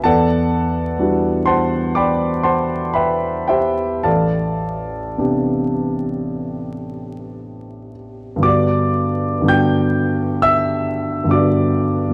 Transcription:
X:1
M:4/4
L:1/8
Q:1/4=60
K:G
V:1 name="Grand piano"
[Adfa]3 [cfac'] [dgbd'] [cfac'] [Begb] [Gceg] | [Ad=fa]6- [Adfa] z | [dd']2 [gg']2 [ee']2 [dd']2 |]
V:2 name="Grand piano"
E,,2 [E,G,DF]6 | A,,,2 [C,B,DG]6 | [G,,D,B,DF]2 [G,,D,B,DF]4 [G,,D,B,DF]2 |]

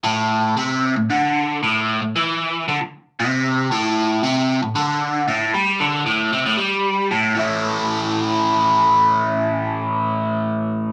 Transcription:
X:1
M:7/8
L:1/16
Q:1/4=115
K:Amix
V:1 name="Overdriven electric guitar" clef=bass
A,,4 =C,3 A,, D,4 A,,2- | A,, A,, E,4 D, z3 =C,4 | A,,4 =C,3 A,, D,4 A,,2 | G,2 D,2 A,,2 =C, A,, G,4 A,,2 |
[A,,E,A,CE]12- [A,,E,A,CE]2- | [A,,E,A,CE]12- [A,,E,A,CE]2 |]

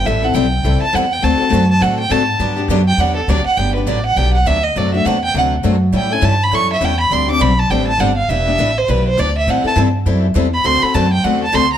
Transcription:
X:1
M:4/4
L:1/8
Q:"Swing" 1/4=204
K:G
V:1 name="Violin"
e f g3 a f g | a3 a f g a2- | a z2 g f A d f | g B d f g f e _e |
d e f g f z3 | g _a =a b ^c' e g b | c' d' b a g a f =f | e3 c B c d e |
f a z4 z b | c' b a g f a c' _b |]
V:2 name="Steel-string acoustic guitar"
[E,G,CEA] [CEA] [E,G,CEA] z [E,G,CEA] z [E,G,CEA] z | [D,A,CFA] [CFA] [D,A,CFA] z [D,A,CFA] z [D,A,CFA] z | [D,F,B,DG] [B,DG] [D,F,B,DG] z [D,F,B,DG] z [D,F,B,DG] z | [D,F,B,DG] [B,DG] [D,F,B,DG] z [D,F,B,DG] z [D,F,B,DG] z |
[C,F,A,DF] [A,DF] [C,F,A,DF] z [C,F,A,DF] z [C,F,A,DF] z | [E,G,^CEA] [CEA] [E,G,CEA] z [E,G,CEA] z [E,G,CEA] z | [D,G,CDG] [CDG] [D,G,CDG] z [D,G,CDG] z [D,G,CDG] z | [E,B,DG] [B,DG] [E,B,DG] z [E,B,DG] z [E,B,DG] z |
[E,G,CEA] [CEA] [E,G,CEA] z [E,G,CEA] z [E,G,CEA] z | [D,A,CFA] [CFA] [D,A,CFA] z [D,A,CFA] z [D,A,CFA] z |]
V:3 name="Steel-string acoustic guitar"
[E,G,CEA] z [E,G,CEA] z [E,G,CEA] z [E,G,CEA] z | [D,A,CFA] z [D,A,CFA] z [D,A,CFA] z [D,A,CFA] z | [D,F,B,DG] z [D,F,B,DG] z [D,F,B,DG] z [D,F,B,DG] z | [D,F,B,DG] z [D,F,B,DG] z [D,F,B,DG] z [D,F,B,DG] z |
[F,CDA] z [F,CDA] z [F,CDA] z [F,CDA] z | [E,G,^CEA] z [E,G,CEA] z [E,G,CEA] z [E,G,CEA] z | [D,G,CDG] z [D,G,CDG] z [D,G,CDG] z [D,G,CDG] z | [E,G,DEB] z [E,G,DEB] z [E,G,DEB] z [E,G,DEB] z |
[E,G,CEA] z [E,G,CEA] z [E,G,CEA] z [E,G,CEA] z | [D,A,CFA] z [D,A,CFA] z [D,A,CFA] z [D,A,CFA] z |]
V:4 name="Upright bass" clef=bass
A,,,2 B,,,2 C,, z E,,2 | D,, z F,,2 A,,2 _A,,2 | G,,2 F,,2 E,,2 D,, z | G,,,2 A,,,2 B,,,2 D,,2 |
F,,2 E,,2 D,,2 F,,2 | A,,2 G,,2 F,,2 E,,2 | D,,2 B,,,2 A,,,2 G,,,2 | E,,,2 A,,,2 B,,,2 D,,2 |
A,, z G,,2 F,,2 E,,2 | D,, z F,,2 E,,2 D,,2 |]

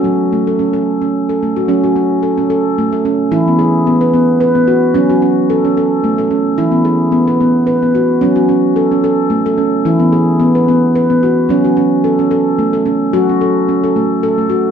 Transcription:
X:1
M:3/4
L:1/16
Q:"Swing 16ths" 1/4=110
K:F#m
V:1 name="Handpan"
F z A, A C A2 C2 A A, F | C F C2 A C A2 A, A C2 | E B, G2 B, B B,2 B B, F2 | C F C2 A C A2 A, A C2 |
E B, G2 B, B B,2 B B, F2 | C F C2 A C A2 A, A C2 | E B, G2 B, B B,2 B B, F2 | C F C2 A C A2 A, A C2 |
F C A2 C A A,2 A A, F2 |]
V:2 name="Handpan" clef=bass
F,12 | F,12 | E,12 | F,12 |
E,12 | F,12 | E,12 | F,12 |
F,12 |]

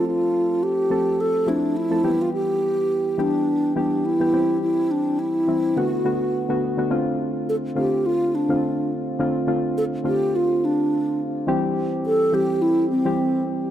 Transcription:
X:1
M:4/4
L:1/16
Q:"Swing 16ths" 1/4=105
K:Flyd
V:1 name="Alto flute"
F4 G4 A2 D2 E3 F | G6 D4 D2 E4 | E2 D2 E4 ^F6 z2 | z4 A2 G2 F2 D4 z2 |
z4 A2 G2 F2 D4 z2 | z4 A2 G2 E2 C4 z2 |]
V:2 name="Synth keys"
[F,A,CA]4- [F,A,CA] z [F,A,CA]3 z [F,A,CE]3 [F,A,CA] [E,G,B,G]2- | [E,G,B,G]4- [E,G,B,G] z [E,G,B,G]3 z [E,G,B,G]3 [E,G,B,G] [E,G,CG]2- | [E,G,CG]4- [E,G,CG] z [E,G,CE]2 [D,A,B,^F]2 [D,A,B,F]3 [D,A,B,F]2 [D,A,B,F] | [D,A,CF]4- [D,A,CF] z [D,A,CF]4 z [D,A,CF]4 z |
[D,A,CF]2 [D,A,CF]3 z [D,A,CF]6- [D,A,CF] z3 | [E,G,CG]4- [E,G,CG] z [E,G,CG]4 z [E,G,CG]4 z |]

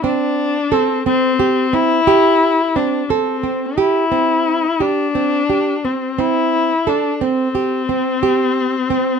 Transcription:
X:1
M:9/8
L:1/8
Q:3/8=59
K:C
V:1 name="Viola"
D2 C C2 E3 D | C2 E3 D3 C | E2 D C6 |]
V:2 name="Nylon-string guitar"
C2 A C G C G2 C | A C G C2 G C G C | C2 A C G C G2 C |]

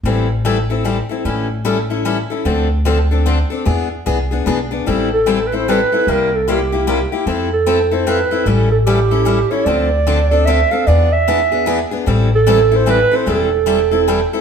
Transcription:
X:1
M:3/4
L:1/16
Q:"Swing" 1/4=150
K:Am
V:1 name="Clarinet"
z12 | z12 | z12 | z12 |
z2 A3- A/2 B/2 c2 B4 | _B2 A2 G6 z2 | z2 A4 c2 B4 | A2 A2 G6 ^c2 |
d8 e2 f2 | d2 e8 z2 | z2 A4 c2 B2 c2 | A8- A2 z2 |]
V:2 name="Steel-string acoustic guitar"
[E,G,CEA]2 z2 [E,G,CEA]2 [CEA]2 [E,G,CEA]2 [CEA]2 | [E,G,^CEA]2 z2 [E,G,CEA]2 [CEA]2 [E,G,CEA]2 [CEA]2 | [D,F,CDA]2 z2 [D,F,CDA]2 [CDA]2 [D,F,CDA]2 [CDA]2 | [E,B,D^G]2 z2 [E,B,DG]2 [B,DG]2 [E,B,DG]2 [B,DG]2 |
[E,G,CEA]2 z2 [E,G,CEA]2 [CEA]2 [E,G,CEA]2 [CEA]2 | [C,G,_B,EG]2 z2 [C,G,B,EG]2 [B,EG]2 [C,G,B,EG]2 [B,EG]2 | [F,CEA]2 z2 [F,CEA]2 [CEA]2 [F,CEA]2 [CEA]2 | [E,G,^CEA]2 z2 [E,G,CEA]2 [CEA]2 [E,G,CEA]2 [CEA]2 |
[D,F,CDA]2 z2 [D,F,CDA]2 [CDA]2 [D,F,CDA]2 [CDA]2 | [E,B,D^G]2 z2 [E,B,DG]2 [B,DG]2 [E,B,DG]2 [B,DG]2 | [E,G,CEA]2 z2 [E,G,CEA]2 [CEA]2 [E,G,CEA]2 [CEA]2 | [E,G,CEA]2 z2 [E,G,CEA]2 [CEA]2 [E,G,CEA]2 [CEA]2 |]
V:3 name="Upright bass" clef=bass
A,,,12 | A,,,12 | D,,12 | E,,4 C,,4 B,,,4 |
A,,,12 | C,,12 | F,,12 | A,,,12 |
D,,12 | E,,12 | A,,,12 | E,,,12 |]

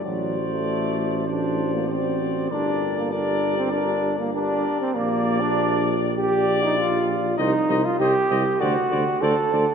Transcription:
X:1
M:4/4
L:1/16
Q:1/4=98
K:Gm
V:1 name="Trumpet"
d8 d4 d4 | d4 d4 d2 z2 d4 | d8 d8 | e2 e2 e2 e2 d2 d2 d2 d2 |]
V:2 name="Flugelhorn"
c8 c4 c4 | B4 B4 B2 z2 B4 | d8 d8 | c2 c2 c2 c2 c2 c2 c2 c2 |]
V:3 name="French horn"
^F8 F4 F4 | G4 G4 G2 z2 G4 | G8 G8 | G2 G2 G2 G2 A2 A2 A2 A2 |]
V:4 name="Trombone"
^F,3 A,4- A, D3 B, C4 | D3 B, D3 C D3 B, D3 C | B,3 D3 z2 G3 E F4 | E3 F G4 ^F4 A4 |]
V:5 name="Tuba" clef=bass
A,,,16 | G,,,12- G,,,2 z2 | B,,,16 | C,,2 C,,2 C,,2 C,,2 D,,2 D,,2 D,,2 D,,2 |]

